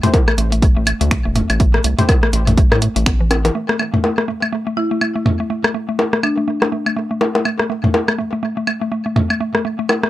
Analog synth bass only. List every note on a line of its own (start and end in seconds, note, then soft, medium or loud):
0.38 0.71 A1 medium
0.77 0.94 A1 loud
1.01 1.18 D2 loud
1.25 1.42 E1 loud
1.50 1.80 A1 loud
1.84 1.95 C2 loud
2.33 2.66 A1 medium
2.72 2.89 A2 medium
2.96 3.51 A1 loud